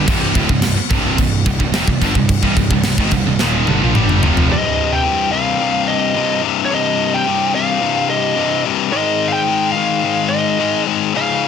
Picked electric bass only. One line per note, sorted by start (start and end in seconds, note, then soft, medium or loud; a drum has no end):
0.08 0.33 C1 medium
0.35 0.48 D1 loud
0.49 0.62 C1 medium
0.63 0.76 C1 medium
0.78 muted picked electric bass stroke soft
0.91 1.16 C1 loud
1.19 1.44 C1 medium
1.46 1.59 C1 medium
1.60 1.73 C1 loud
1.73 1.86 F1 loud
1.87 2.00 C1 medium
2.01 2.14 G1 loud
2.15 2.41 C1 medium
2.43 2.56 C1 loud
2.57 2.70 C1 medium
2.71 2.84 C1 medium
2.85 2.97 C1 medium
2.98 3.11 G#1 loud
3.12 3.25 C1 medium
3.26 3.39 C1 medium
3.41 3.66 D#1 medium
3.69 3.81 G1 loud
3.83 3.95 A#1 loud
3.96 4.22 G1 loud
4.25 4.49 F1 loud